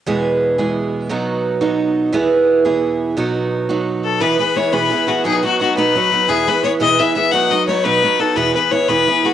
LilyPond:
<<
  \new Staff \with { instrumentName = "Fiddle" } { \time 6/8 \key e \major \tempo 4. = 116 r2. | r2. | r2. | r2 r8 a'8 |
b'8 b'8 cis''8 b'4 fis'8 | gis'8 fis'8 fis'8 b'4. | gis'8 b'8 cis''8 dis''8 e''8 e''8 | fis''8 dis''8 cis''8 b'4 a'8 |
b'8 b'8 cis''8 b'4 fis'8 | }
  \new Staff \with { instrumentName = "Steel-string acoustic guitar" } { \time 6/8 \key e \major <e, b, e gis b gis'>4. <e, b, e gis b gis'>4. | <b, fis b dis' fis'>4. <b, fis b dis' fis'>4. | <e, b, e b e' gis'>4. <e, b, e b e' gis'>4. | <b, fis b dis' fis'>4. <b, fis b dis' fis'>4. |
<e, b, e b e' gis'>8 <e b e' gis'>8 <e b e' gis'>8 <e, b, e b e' gis'>8 <e b e' gis'>8 <e b e' gis'>8 | <b, fis b dis' fis'>8 <fis b dis' fis'>8 <fis b dis' fis'>8 <b, fis b dis' fis'>8 <fis b dis' fis'>8 <fis b dis' fis'>8 | <e, b, e b e' gis'>8 <e b e' gis'>8 <e b e' gis'>8 <e, b, e b e' gis'>8 <e b e' gis'>8 <e b e' gis'>8 | <b, fis b dis' fis'>8 <fis b dis' fis'>8 <fis b dis' fis'>8 <b, fis b dis' fis'>8 <fis b dis' fis'>8 <fis b dis' fis'>8 |
<e, b, e b e' gis'>8 <e b e' gis'>8 <e b e' gis'>8 <e, b, e b e' gis'>8 <e b e' gis'>8 <e b e' gis'>8 | }
>>